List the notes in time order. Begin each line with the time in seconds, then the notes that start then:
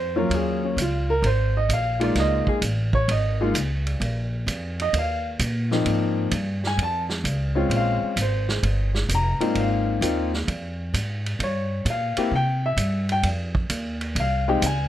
Already playing: F2 C5
0.16 F#3 A#3 C#4 F4 A#4
0.30 D#2, kick, ride
0.34 G#4
0.65 C#4
0.77 C#2, kick, hi-hat pedal, ride
0.82 F4
1.10 A#4
1.22 G#1 C5, kick, ride
1.57 D#5
1.69 A#1, kick, hi-hat pedal, ride
1.73 F5
2.00 G#3 A#3 D#4 F4, ride
2.04 D5
2.15 C#2, kick, snare, ride
2.20 D#5
2.47 G#4, muted upright bass stroke, kick
2.62 A1, kick, hi-hat pedal, ride
2.93 C#5, kick
3.08 G#1 D#5, kick, ride
3.41 G#3 A#3 D#4 F4
3.54 C#2, kick, hi-hat pedal, ride
3.87 ride
4.00 A#1, kick, ride
4.46 F2, kick, hi-hat pedal, ride
4.80 D#5, ride
4.93 D#2, kick, ride
4.98 F5
5.39 A#2, kick, hi-hat pedal, ride
5.71 F3 A#3 C4 D#4, snare
5.86 G#2, kick, ride
6.31 G2, kick, hi-hat pedal, ride
6.64 G#5, snare
6.77 F2, kick, ride
6.83 A5
7.09 snare
7.24 C#2, kick, hi-hat pedal, ride
7.55 G#3 C4 C#4 F4
7.70 A#1, kick, ride
7.76 F5
8.02 muted upright bass stroke
8.16 G#1, kick, hi-hat pedal, ride
8.21 C5
8.49 snare
8.63 G1, kick, ride
8.95 snare
9.09 F1, kick, hi-hat pedal, ride
9.15 A#5
9.39 G#2 A#3 C4 D#4 F4, muted upright bass stroke, ride
9.55 G#1, kick, ride
9.60 F5
10.01 D#2 A#3 C4 D#4 F4, kick, hi-hat pedal, ride
10.34 snare
10.47 F2, kick, ride
10.94 G#2, kick, hi-hat pedal, ride
11.26 ride
11.39 G2, kick, ride
11.44 C#5
11.85 A#2, kick, hi-hat pedal, ride
11.90 F5
12.17 A#3 C4 E4 G4, muted upright bass stroke, ride
12.31 C3, kick
12.36 G5
12.66 E5
12.77 G2, kick, hi-hat pedal, ride
13.09 G5, ride
13.23 F2, kick, ride
13.55 kick
13.70 D#2, kick, hi-hat pedal, ride
14.01 ride
14.15 C2, kick, ride
14.20 F5
14.48 G#3 C4 D#4 G4
14.62 C#2, kick, hi-hat pedal, ride
14.66 G#5